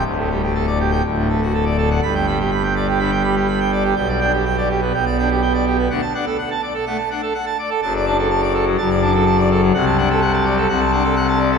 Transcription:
<<
  \new Staff \with { instrumentName = "Pipe organ" } { \time 4/4 \key g \major \tempo 4 = 124 r4. r16 g''16 r4. r16 fis''16 | b''16 g''16 b''16 g'16 b''16 g''16 d''16 g'16 b''16 g''16 b''16 g'16 b''16 g''16 d''16 g'16 | g''16 d''16 g''16 g'16 g''16 d''16 g'16 b16 g''16 d''16 g''16 g'16 g''16 d''16 g'16 b16 | fis''16 a''16 fis''16 a'16 fis''16 a''16 d''16 a'16 fis''16 a''16 fis''16 a'16 fis''16 a''16 d''16 a'16 |
a''16 d''16 a''16 a'16 a''16 d''16 a'16 fis16 a''16 d''16 a''16 a'16 a''16 d''16 a'16 fis16 | fis''16 a''16 fis''16 a'16 fis''16 a''16 d''16 a'16 fis''16 a''16 fis''16 a'16 fis''16 a''16 d''16 a'16 | }
  \new Staff \with { instrumentName = "Pipe organ" } { \clef bass \time 4/4 \key g \major << { d,16 a,16 g16 g'16 a'16 d''16 g'16 r16 d,16 a,16 a16 fis'16 a'16 d''16 a'16 r16 | g,8 g16 r4 r16 d16 r16 g16 r4 r16 | b,8 d'16 r4 r16 b,8 d'16 r4 r16 | d16 r16 d'16 r4 r16 a16 r16 d'16 r4 r16 |
fis,8 d'16 r4 r16 fis,8 d'16 r4 r16 | c8 d'16 r4 r16 c8 d'16 r4 r16 | } \\ { d,,2 d,,2 | g,,1 | b,,2 b,,2 | d,16 r2. r8. |
fis,,2 fis,,2 | c,2 c,2 | } >> }
>>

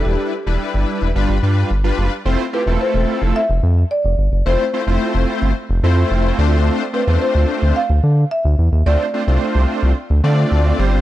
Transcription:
<<
  \new Staff \with { instrumentName = "Marimba" } { \time 4/4 \key d \dorian \tempo 4 = 109 g'2 r2 | r8 b'8 c''4 e''4 d''4 | c''2 r2 | r8 b'8 c''4 f''4 e''4 |
d''2 r2 | }
  \new Staff \with { instrumentName = "Analog polysynth" } { \time 4/4 \key d \dorian <g d' e' b'>8 r16 <g d' e' b'>4~ <g d' e' b'>16 <g d' f' b'>8 <g d' f' b'>8 r16 <g d' f' b'>8 r16 | <a c' e' f' c''>16 r16 <a c' e' f' g'>16 <a c' e' f' a'>4~ <a c' e' f' a'>16 r2 | <a c' e' f' c''>16 r16 <a c' e' f' c''>16 <a c' e' f' c''>4~ <a c' e' f' c''>16 r8 <a c' e' f' c''>4 <a c' d' f' c''>8~ | <a c' d' f' c''>16 r16 <a c' d' f' c''>16 <a c' d' f' c''>4~ <a c' d' f' c''>16 r2 |
<a c' d' f' c''>16 r16 <a c' d' f' c''>16 <a c' d' f' c''>4~ <a c' d' f' c''>16 r8 <a c' d' f' d''>4 <g c' d' f' c''>8 | }
  \new Staff \with { instrumentName = "Analog synth bass" } { \clef bass \time 4/4 \key d \dorian e,,16 r8 e,,16 r16 g,,16 r16 e,,16 g,,16 g,,16 g,8 g,,8 fis,,16 r16 | f,,16 r8 e,,16 r16 e,,16 r16 f,,16 r16 f,,16 f,8 r16 f,,16 g,,16 fis,,16 | f,,16 r8 f,,16 r16 f,,16 r16 g,,16 r16 f,,16 f,8 f,,8 d,8~ | d,16 r8 e,16 r16 d,16 r16 d,16 r16 d,16 d8 r16 d,16 e,16 ees,16 |
d,16 r8 c,16 r16 c,16 r16 c,16 r16 d,16 d8 d,8 g,,8 | }
>>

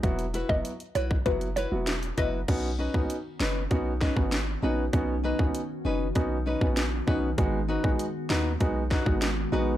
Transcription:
<<
  \new Staff \with { instrumentName = "Synth pluck" } { \time 4/4 \key b \major \tempo 4 = 98 r8. dis''16 r8 cis''16 r16 b'16 r16 cis''16 r8. dis''16 r16 | r1 | r1 | r1 | }
  \new Staff \with { instrumentName = "Nylon-string guitar" } { \time 4/4 \key b \major r8 <e' fis' b'>8 r8 <e' fis' b'>8 r8 <e' fis' b'>8 r8 <e' fis' b'>8 | r8 <cis' dis' b'>8 r8 <cis' dis' b'>8 r8 <cis' dis' b'>8 r8 <cis' dis' b'>8 | r8 <cis' dis' b'>8 r8 <cis' dis' b'>8 r8 <cis' dis' b'>8 r8 <cis' dis' b'>8 | r8 <dis' fis' b'>8 r8 <dis' fis' b'>8 r8 <dis' fis' b'>8 r8 <dis' fis' b'>8 | }
  \new Staff \with { instrumentName = "Grand piano" } { \time 4/4 \key b \major <fis b e' fis'>16 r8 <fis b e' fis'>16 r4 <fis b e' fis'>16 r8 <fis b e' fis'>16 r8 <fis b e' fis'>16 r16 | <b cis' dis' fis'>16 r8 <b cis' dis' fis'>16 r4 <b cis' dis' fis'>16 r8 <b cis' dis' fis'>16 r8 <b cis' dis' fis'>16 r16 | <b cis' dis' fis'>16 r8 <b cis' dis' fis'>16 r4 <b cis' dis' fis'>16 r8 <b cis' dis' fis'>16 r8 <b cis' dis' fis'>16 r16 | <gis b dis' fis'>16 r8 <gis b dis' fis'>16 r4 <gis b dis' fis'>16 r8 <gis b dis' fis'>16 r8 <gis b dis' fis'>16 r16 | }
  \new Staff \with { instrumentName = "Ambient pad" } { \time 4/4 \key b \major << { r1 | <dis fis'>1~ | <dis fis'>1~ | <dis fis'>1 | } \\ { r1 | <b cis'>1~ | <b cis'>1 | <gis b>1 | } >> }
  \new Staff \with { instrumentName = "808-style bass" } { \clef bass \time 4/4 \key b \major e,,8. fis,,16 r8 b,,8 fis,,8. e,,8. fis,,8 | b,,8. cis,16 r8 fis,,8 b,,8. gis,,8. ais,,8 | b,,8. cis,16 r8 fis,,8 b,,8. ais,,8. b,,8 | gis,,8. ais,,16 r8 dis,8 b,,8. gis,,8. ais,,8 | }
  \new DrumStaff \with { instrumentName = "Drums" } \drummode { \time 4/4 <hh bd>16 hh16 hh16 bd16 hh16 hh16 hh16 bd16 <hh bd>16 hh16 hh8 <hh sn>16 hh16 <hh bd>8 | <cymc hh bd>8. bd16 hh8 sn8 <hh bd>8 <bd sn>16 bd16 <hh sn>4 | <hh bd>8. bd16 hh4 <hh bd>8. bd16 <hh sn>8 bd8 | <hh bd>8. bd16 hh8 sn8 <hh bd>8 <bd sn>16 bd16 <hh sn>4 | }
>>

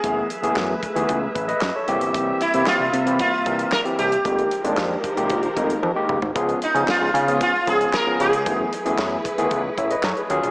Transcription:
<<
  \new Staff \with { instrumentName = "Sitar" } { \time 4/4 \key ges \lydian \tempo 4 = 114 aes'4. r2 r8 | r8 e'8 f'4 f'4 bes'8 g'8~ | g'4. r2 r8 | r8 ees'8 f'4 f'8 aes'8 bes'8 aes'8~ |
aes'4. r2 r8 | }
  \new Staff \with { instrumentName = "Tine electric piano" } { \time 4/4 \key ges \lydian r2 r8 <aes' ces''>16 <ces'' ees''>8 <a' des''>8 r16 | r1 | r1 | r1 |
r2 r8 <des'' fes''>16 <ces'' ees''>16 <a' des''>16 <aes' ces''>8 r16 | }
  \new Staff \with { instrumentName = "Tine electric piano" } { \time 4/4 \key ges \lydian <fes a ces' aes'>8 r16 <fes a ces' aes'>8 r8 <fes a ces' aes'>8 r4 r16 <e bes c' g'>8~ | <e bes c' g'>8 r16 <e bes c' g'>8 r8 <e bes c' e'>8 r16 <e bes c' bes'>8 r16 <e bes c' g'>8 r16 | <ees aes bes g'>8 r16 <ees aes bes d'>8 r8 <ees aes bes g'>8 r16 <ees aes bes ees'>8 r16 <ees aes bes g'>8 r16 | <f ces' des' aes'>8 r16 <f ces' des' aes'>8 r8 <f ces' des' aes'>8 r16 <f ces' des' aes'>8 r16 <f ces' des' aes'>8 r16 |
<fes a ces' aes'>8 r16 <fes a ces' aes'>8 r8 <fes a ces' aes'>8 r4 r16 <ges des' f' aes'>8 | }
  \new Staff \with { instrumentName = "String section" } { \time 4/4 \key ges \lydian <ges a aes' ces'' fes''>2.~ <ges a aes' ces'' fes''>8 <c g bes>8~ | <c g bes>1 | <ees f aes g' bes'>1 | <des aes ces' f'>1 |
<ges a fes' aes' ces''>2.~ <ges a fes' aes' ces''>8 <ees ges des' f'>8 | }
  \new Staff \with { instrumentName = "Analog synth bass" } { \clef bass \time 4/4 \key ges \lydian ges,,8 r16 ges,,16 ges,8 r16 ees,16 des,8 a,,8 ges,16 r16 c,16 g,,16 | c,8 r16 c16 r16 c,16 c8. r16 c,8 r8 c,8 | f,,8 r16 f,,16 f,8 r16 c,16 bes,,8 f,,8 f,16 r16 des,16 aes,,16 | des,8 r16 des16 r16 des,16 des8. r16 des,8 r8 des,8 |
ges,,8 r16 ges,,16 ges,8 r16 ees,16 des,8 a,,8 ges,16 r16 ees,16 bes,,16 | }
  \new DrumStaff \with { instrumentName = "Drums" } \drummode { \time 4/4 <hh bd>8 hh16 hh16 <hc sn>8 <hh bd>16 hh16 <hh bd>8 <hh bd>16 hh16 <hc sn>8 hh16 hh16 | <hh bd>8 hh16 hh16 <hc sn>8 hh16 hh16 <hh bd>8 <hh bd>16 hh16 <hc sn>16 hh16 hh16 hh16 | <hh bd>16 hh16 hh16 hh16 <hc sn>8 <hh bd>16 hh16 <hh bd>16 hh16 <hh bd>16 hh16 tommh8 toml16 tomfh16 | <hh bd>16 hh16 hh16 hh16 <hc sn>8 hh16 hh16 <hh bd>8 <hh bd>16 hh16 <hc sn>8 hh16 hh16 |
<hh bd>8 hh16 hh16 <hc sn>8 <hh bd>16 hh16 <hh bd>8 <hh bd>16 hh16 <hc sn>16 hh16 hh16 hh16 | }
>>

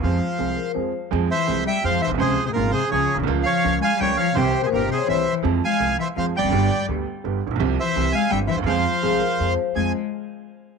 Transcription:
<<
  \new Staff \with { instrumentName = "Bandoneon" } { \time 3/4 \key f \minor \tempo 4 = 167 <c'' f''>2 r4 | r8 <c'' e''>4 <e'' g''>8 <c'' f''>8 <c'' e''>8 | <aes' c''>8. <aes' c''>16 <f' bes'>8 <aes' c''>8 <aes' des''>8. r16 | r8 <des'' f''>4 <f'' aes''>8 <des'' g''>8 <des'' f''>8 |
<g' c''>8. <aes' c''>16 <g' bes'>8 <aes' c''>8 <c'' e''>8. r16 | r8 <f'' aes''>4 <c'' e''>8 <c'' f''>8 <d'' g''>8~ | <d'' g''>4 r2 | r8 <c'' e''>4 <f'' aes''>8 <e'' g''>8 <c'' e''>8 |
<c'' f''>2~ <c'' f''>8 r8 | aes''8 r2 r8 | }
  \new Staff \with { instrumentName = "Vibraphone" } { \time 3/4 \key f \minor r4 aes'8 bes'8 c''4 | r2. | r2. | r2. |
r8 c''16 bes'16 c''8. des''16 c''4~ | c''16 r2 r8. | r2. | r2. |
r4 aes'8 bes'8 c''4 | c''8 r2 r8 | }
  \new Staff \with { instrumentName = "Upright piano" } { \clef bass \time 3/4 \key f \minor <f, f aes c' aes'>8 r8 <c, c f aes c' aes'>8 r8 <f, f aes c' aes'>8 r8 | <f, f aes c' aes'>8 r8 <c, c f aes c' aes'>8 r8 <f, f aes c' aes'>8 r32 bes,,32 b,,32 c,32 | <des, des f aes des' aes'>8 r8 <aes,, aes, f aes des' aes'>8 r8 <des, des f aes des' aes'>8 r32 bes,,32 b,,32 c,32 | <des, des f bes f'>8 r8 <des, des f bes f'>8 r8 <des, des f bes f'>8 r8 |
<c, c e g c' g'>8 r8 <g,, g, e g c' g'>8 r8 <c, c e g c' g'>8 r8 | <f, f aes c' aes'>8 r8 <c, c f aes c' aes'>8 r8 <f, f aes c' aes'>8 r32 e,32 f,32 ges,32 | <g,, g, d g b g'>8 r8 <d, d g b g'>8 r8 <g,, g, d g b g'>8 r32 a,,32 bes,,32 b,,32 | <c, c f g c' g'>8 r8 <c, c e g c' g'>8 r8 <g,, g, e g c' g'>8 r32 d,32 ees,32 e,32 |
<f, f aes c' aes'>8 r8 <c, c f aes c' aes'>8 r8 <f, f aes c' aes'>8 r8 | <f, c' f' aes'>8 r2 r8 | }
  \new Staff \with { instrumentName = "Cello" } { \clef bass \time 3/4 \key f \minor f2 r4 | r8 e4 g8 f8 e8 | c8. c16 bes,8 c8 des8. r16 | r8 f4 aes8 g8 f8 |
c8. c16 bes,8 c8 e8. r16 | r8 aes4 e8 f8 g8~ | g4 r2 | r8 e4 aes8 g8 e8 |
f2~ f8 r8 | aes8 r2 r8 | }
  \new Staff \with { instrumentName = "Upright bass" } { \clef bass \time 3/4 \key f \minor f,16. r8 r32 c,16. r8 r32 f,16. r8 r32 | f,16. r8 r32 c,16. r8 r32 f,16. r16 bes,,32 b,,32 c,32 | des,16. r8 r32 aes,,16. r8 r32 des,16. r16 bes,,32 b,,32 c,32 | des,16. r8 r32 des,16. r8 r32 des,16. r8 r32 |
c,16. r8 r32 g,,16. r8 r32 c,16. r8 r32 | f,16. r8 r32 c,16. r8 r32 f,16. r16 e,,32 f,,32 ges,,32 | g,,16. r8 r32 d,16. r8 r32 g,,16. r16 a,,32 bes,,32 b,,32 | c,16. r8 r32 c,16. r8 r32 g,,16. r16 d,32 ees,32 e,32 |
f,16. r8 r32 c,16. r8 r32 f,16. r8 r32 | f,8 r2 r8 | }
>>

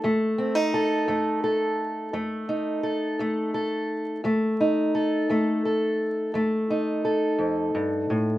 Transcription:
\new Staff \with { instrumentName = "Steel-string acoustic guitar" } { \time 12/8 \key f \mixolydian \tempo 4. = 57 << { a8 c'16 ees'16 a'8 a8 a'4 a8 ees'8 a'8 a8 a'4 | a8 ees'8 a'8 a8 a'4 a8 ees'8 a'2 | } \\ { f,4 r8 f,4 r8 f,4 r8 f,4 r8 | f,4 r8 f,4 r8 f,4 r8 f,8 g,8 a,8 | } >> }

